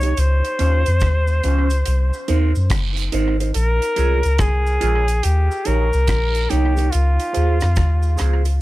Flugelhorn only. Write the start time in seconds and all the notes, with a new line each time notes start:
Already playing: C#5
0.20 C5
3.56 A#4
4.40 G#4
5.24 G4
5.66 A#4
6.50 G4
6.91 F4